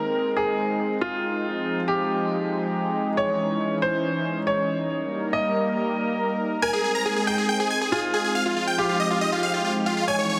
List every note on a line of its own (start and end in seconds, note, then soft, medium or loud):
0.00 1.43 G#3 medium
0.00 3.14 C4 medium
0.00 6.59 D#4 medium
0.00 0.28 A#4 medium
0.00 1.41 A#4 medium
0.37 0.93 G#4 medium
1.01 1.79 F4 medium
1.44 3.15 F3 medium
1.44 4.86 G#3 medium
1.88 3.09 G4 medium
3.17 4.88 E3 medium
3.17 4.88 C#4 medium
3.17 3.73 C#5 medium
3.82 4.38 C5 medium
4.47 5.24 C#5 medium
4.90 6.61 G3 medium
4.90 6.61 A#3 medium
4.90 8.32 A#4 medium
5.33 6.54 D#5 medium
6.62 8.34 G#3 medium
6.62 10.04 C4 medium
6.62 10.40 D#4 medium
6.62 7.19 A#4 medium
6.62 6.71 G#5 medium
6.73 6.81 G#4 medium
6.84 6.92 G#4 medium
6.95 7.03 A#5 medium
7.06 7.14 G#4 medium
7.16 7.25 G#4 medium
7.27 7.83 G#4 medium
7.27 7.35 G5 medium
7.38 7.46 G#4 medium
7.49 7.57 G5 medium
7.60 7.68 G#4 medium
7.70 7.79 G#5 medium
7.81 7.89 G#4 medium
7.92 8.70 F4 medium
7.92 8.00 G#4 medium
8.14 8.22 G#4 medium
8.24 8.33 G#4 medium
8.35 10.06 F3 medium
8.35 10.40 G#3 medium
8.35 8.43 F5 medium
8.46 8.54 F4 medium
8.57 8.65 F4 medium
8.67 8.76 G5 medium
8.78 8.86 F4 medium
8.78 9.99 G4 medium
8.89 8.97 F4 medium
9.00 9.08 D#5 medium
9.11 9.19 F4 medium
9.21 9.30 D#5 medium
9.32 9.40 F4 medium
9.43 9.51 F5 medium
9.54 9.62 F4 medium
9.65 9.73 F4 medium
9.86 9.94 F4 medium
9.97 10.05 F4 medium
10.08 10.40 E3 medium
10.08 10.40 C#4 medium
10.08 10.40 C#5 medium
10.08 10.16 G#5 medium
10.19 10.27 C#5 medium
10.30 10.38 C#5 medium